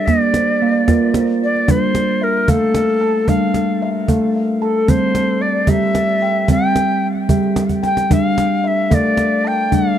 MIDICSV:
0, 0, Header, 1, 4, 480
1, 0, Start_track
1, 0, Tempo, 535714
1, 72, Time_signature, 6, 3, 24, 8
1, 8947, End_track
2, 0, Start_track
2, 0, Title_t, "Native American-style wooden flute"
2, 0, Program_c, 0, 77
2, 54, Note_on_c, 0, 74, 78
2, 1020, Note_off_c, 0, 74, 0
2, 1292, Note_on_c, 0, 74, 85
2, 1528, Note_on_c, 0, 72, 99
2, 1541, Note_off_c, 0, 74, 0
2, 2002, Note_on_c, 0, 70, 84
2, 2016, Note_off_c, 0, 72, 0
2, 2239, Note_on_c, 0, 69, 98
2, 2252, Note_off_c, 0, 70, 0
2, 2945, Note_on_c, 0, 77, 79
2, 2959, Note_off_c, 0, 69, 0
2, 3484, Note_off_c, 0, 77, 0
2, 4139, Note_on_c, 0, 69, 76
2, 4383, Note_on_c, 0, 72, 92
2, 4396, Note_off_c, 0, 69, 0
2, 4854, Note_on_c, 0, 74, 85
2, 4868, Note_off_c, 0, 72, 0
2, 5101, Note_on_c, 0, 76, 99
2, 5114, Note_off_c, 0, 74, 0
2, 5822, Note_off_c, 0, 76, 0
2, 5839, Note_on_c, 0, 79, 98
2, 6336, Note_off_c, 0, 79, 0
2, 7038, Note_on_c, 0, 79, 95
2, 7283, Note_on_c, 0, 77, 101
2, 7296, Note_off_c, 0, 79, 0
2, 7772, Note_on_c, 0, 76, 86
2, 7786, Note_off_c, 0, 77, 0
2, 8012, Note_on_c, 0, 74, 91
2, 8025, Note_off_c, 0, 76, 0
2, 8489, Note_on_c, 0, 79, 97
2, 8503, Note_off_c, 0, 74, 0
2, 8735, Note_on_c, 0, 77, 101
2, 8749, Note_off_c, 0, 79, 0
2, 8947, Note_off_c, 0, 77, 0
2, 8947, End_track
3, 0, Start_track
3, 0, Title_t, "Steel tongue drum"
3, 0, Program_c, 1, 114
3, 0, Note_on_c, 1, 69, 54
3, 73, Note_on_c, 1, 58, 83
3, 252, Note_off_c, 1, 58, 0
3, 313, Note_off_c, 1, 69, 0
3, 323, Note_on_c, 1, 72, 50
3, 550, Note_on_c, 1, 58, 68
3, 558, Note_on_c, 1, 77, 64
3, 730, Note_off_c, 1, 58, 0
3, 787, Note_on_c, 1, 58, 87
3, 794, Note_on_c, 1, 65, 73
3, 795, Note_on_c, 1, 70, 63
3, 1023, Note_off_c, 1, 72, 0
3, 1034, Note_on_c, 1, 72, 54
3, 1271, Note_off_c, 1, 65, 0
3, 1272, Note_off_c, 1, 77, 0
3, 1328, Note_off_c, 1, 58, 0
3, 1503, Note_on_c, 1, 62, 69
3, 1510, Note_off_c, 1, 70, 0
3, 1511, Note_on_c, 1, 55, 88
3, 1750, Note_off_c, 1, 72, 0
3, 1984, Note_off_c, 1, 62, 0
3, 1985, Note_on_c, 1, 76, 63
3, 2050, Note_off_c, 1, 55, 0
3, 2225, Note_on_c, 1, 69, 75
3, 2226, Note_on_c, 1, 77, 67
3, 2239, Note_on_c, 1, 57, 95
3, 2699, Note_on_c, 1, 81, 62
3, 2704, Note_off_c, 1, 69, 0
3, 2704, Note_off_c, 1, 76, 0
3, 2774, Note_off_c, 1, 57, 0
3, 2944, Note_on_c, 1, 62, 74
3, 2945, Note_off_c, 1, 77, 0
3, 2953, Note_on_c, 1, 55, 85
3, 3421, Note_off_c, 1, 81, 0
3, 3424, Note_off_c, 1, 62, 0
3, 3426, Note_on_c, 1, 76, 71
3, 3490, Note_off_c, 1, 55, 0
3, 3661, Note_on_c, 1, 77, 62
3, 3662, Note_on_c, 1, 69, 76
3, 3667, Note_on_c, 1, 57, 90
3, 4138, Note_on_c, 1, 81, 60
3, 4142, Note_off_c, 1, 69, 0
3, 4144, Note_off_c, 1, 76, 0
3, 4206, Note_off_c, 1, 57, 0
3, 4372, Note_on_c, 1, 60, 79
3, 4382, Note_off_c, 1, 77, 0
3, 4387, Note_on_c, 1, 55, 90
3, 4620, Note_off_c, 1, 81, 0
3, 4849, Note_on_c, 1, 74, 66
3, 4857, Note_off_c, 1, 60, 0
3, 4926, Note_off_c, 1, 55, 0
3, 5090, Note_on_c, 1, 76, 70
3, 5092, Note_on_c, 1, 67, 82
3, 5100, Note_on_c, 1, 55, 86
3, 5575, Note_on_c, 1, 79, 70
3, 5576, Note_off_c, 1, 74, 0
3, 5578, Note_off_c, 1, 67, 0
3, 5642, Note_off_c, 1, 55, 0
3, 5817, Note_off_c, 1, 76, 0
3, 5818, Note_on_c, 1, 60, 74
3, 5821, Note_on_c, 1, 55, 87
3, 6300, Note_off_c, 1, 79, 0
3, 6301, Note_off_c, 1, 60, 0
3, 6363, Note_off_c, 1, 55, 0
3, 6537, Note_on_c, 1, 67, 75
3, 6539, Note_on_c, 1, 76, 66
3, 6543, Note_on_c, 1, 55, 87
3, 7013, Note_on_c, 1, 79, 58
3, 7021, Note_off_c, 1, 67, 0
3, 7086, Note_off_c, 1, 55, 0
3, 7258, Note_on_c, 1, 55, 92
3, 7263, Note_off_c, 1, 76, 0
3, 7263, Note_on_c, 1, 62, 83
3, 7500, Note_off_c, 1, 79, 0
3, 7742, Note_on_c, 1, 76, 70
3, 7745, Note_off_c, 1, 62, 0
3, 7803, Note_off_c, 1, 55, 0
3, 7979, Note_on_c, 1, 77, 66
3, 7980, Note_on_c, 1, 69, 75
3, 7981, Note_on_c, 1, 57, 94
3, 8463, Note_on_c, 1, 81, 63
3, 8465, Note_off_c, 1, 69, 0
3, 8467, Note_off_c, 1, 76, 0
3, 8527, Note_off_c, 1, 57, 0
3, 8706, Note_off_c, 1, 77, 0
3, 8707, Note_on_c, 1, 62, 78
3, 8708, Note_on_c, 1, 55, 91
3, 8947, Note_off_c, 1, 55, 0
3, 8947, Note_off_c, 1, 62, 0
3, 8947, Note_off_c, 1, 81, 0
3, 8947, End_track
4, 0, Start_track
4, 0, Title_t, "Cajon"
4, 66, Note_on_c, 9, 36, 52
4, 66, Note_on_c, 9, 38, 19
4, 156, Note_off_c, 9, 36, 0
4, 156, Note_off_c, 9, 38, 0
4, 190, Note_on_c, 9, 38, 17
4, 279, Note_off_c, 9, 38, 0
4, 304, Note_on_c, 9, 38, 46
4, 393, Note_off_c, 9, 38, 0
4, 424, Note_on_c, 9, 38, 16
4, 514, Note_off_c, 9, 38, 0
4, 662, Note_on_c, 9, 38, 17
4, 752, Note_off_c, 9, 38, 0
4, 787, Note_on_c, 9, 36, 58
4, 787, Note_on_c, 9, 38, 17
4, 877, Note_off_c, 9, 36, 0
4, 877, Note_off_c, 9, 38, 0
4, 1024, Note_on_c, 9, 38, 51
4, 1113, Note_off_c, 9, 38, 0
4, 1387, Note_on_c, 9, 38, 17
4, 1477, Note_off_c, 9, 38, 0
4, 1508, Note_on_c, 9, 36, 58
4, 1597, Note_off_c, 9, 36, 0
4, 1745, Note_on_c, 9, 38, 51
4, 1834, Note_off_c, 9, 38, 0
4, 2223, Note_on_c, 9, 36, 59
4, 2312, Note_off_c, 9, 36, 0
4, 2460, Note_on_c, 9, 38, 51
4, 2549, Note_off_c, 9, 38, 0
4, 2936, Note_on_c, 9, 36, 47
4, 3026, Note_off_c, 9, 36, 0
4, 3175, Note_on_c, 9, 38, 44
4, 3264, Note_off_c, 9, 38, 0
4, 3658, Note_on_c, 9, 36, 50
4, 3748, Note_off_c, 9, 36, 0
4, 4376, Note_on_c, 9, 36, 55
4, 4466, Note_off_c, 9, 36, 0
4, 4612, Note_on_c, 9, 38, 45
4, 4702, Note_off_c, 9, 38, 0
4, 5082, Note_on_c, 9, 36, 54
4, 5172, Note_off_c, 9, 36, 0
4, 5212, Note_on_c, 9, 38, 16
4, 5301, Note_off_c, 9, 38, 0
4, 5329, Note_on_c, 9, 38, 51
4, 5418, Note_off_c, 9, 38, 0
4, 5809, Note_on_c, 9, 36, 57
4, 5898, Note_off_c, 9, 36, 0
4, 6054, Note_on_c, 9, 38, 49
4, 6143, Note_off_c, 9, 38, 0
4, 6409, Note_on_c, 9, 38, 17
4, 6499, Note_off_c, 9, 38, 0
4, 6532, Note_on_c, 9, 36, 57
4, 6622, Note_off_c, 9, 36, 0
4, 6776, Note_on_c, 9, 38, 59
4, 6865, Note_off_c, 9, 38, 0
4, 6893, Note_on_c, 9, 36, 34
4, 6983, Note_off_c, 9, 36, 0
4, 7020, Note_on_c, 9, 38, 39
4, 7109, Note_off_c, 9, 38, 0
4, 7141, Note_on_c, 9, 38, 43
4, 7231, Note_off_c, 9, 38, 0
4, 7265, Note_on_c, 9, 36, 59
4, 7355, Note_off_c, 9, 36, 0
4, 7506, Note_on_c, 9, 38, 55
4, 7596, Note_off_c, 9, 38, 0
4, 7987, Note_on_c, 9, 36, 56
4, 8076, Note_off_c, 9, 36, 0
4, 8220, Note_on_c, 9, 38, 51
4, 8310, Note_off_c, 9, 38, 0
4, 8710, Note_on_c, 9, 36, 46
4, 8799, Note_off_c, 9, 36, 0
4, 8947, End_track
0, 0, End_of_file